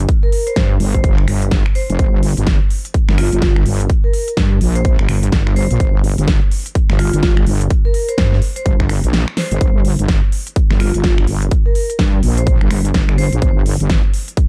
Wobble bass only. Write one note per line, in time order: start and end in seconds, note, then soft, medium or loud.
0.56 0.79 G2 medium
0.80 1.26 G1 loud
1.28 1.64 G1 loud
1.90 1.98 F1 medium
1.99 2.35 G1 loud
2.37 2.59 G1 loud
3.09 3.30 G1 loud
3.33 3.64 G1 loud
3.66 3.88 G1 loud
4.37 4.60 G2 medium
4.61 4.97 A#1 loud
4.99 5.07 G1 loud
5.09 5.31 G1 loud
5.32 5.68 G1 loud
5.71 5.79 A#1 loud
5.80 6.16 G1 loud
6.18 6.40 G1 loud
6.90 7.11 G1 loud
7.13 7.45 G1 loud
7.47 7.69 G1 loud
8.18 8.40 G2 medium
8.66 9.02 G1 loud
9.04 9.25 A#1 loud
9.51 9.59 G1 loud
9.61 9.97 G1 loud
9.99 10.21 G1 loud
10.71 10.92 G1 medium
10.94 11.26 G1 loud
11.28 11.50 G1 loud
11.99 12.21 G2 medium
12.23 12.59 A#1 medium
12.61 12.69 G1 loud
12.71 12.93 G1 loud
12.94 13.30 G1 loud
13.33 13.40 A#1 medium
13.42 13.78 G1 loud
13.80 14.02 G1 loud